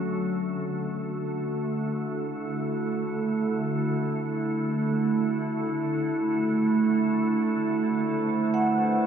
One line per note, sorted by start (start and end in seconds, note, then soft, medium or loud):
0.00 0.23 D3 medium
0.00 0.22 F#3 medium
0.00 0.23 A3 medium
0.00 1.49 C#4 medium
0.00 9.07 F#4 medium
0.00 2.76 A4 medium
0.23 7.50 D3 medium
0.23 9.07 D3 medium
0.23 9.07 A3 medium
0.51 9.07 A3 medium
1.68 9.07 E4 medium
7.95 9.07 C5 medium
8.43 9.07 B4 medium
8.54 9.07 F#5 medium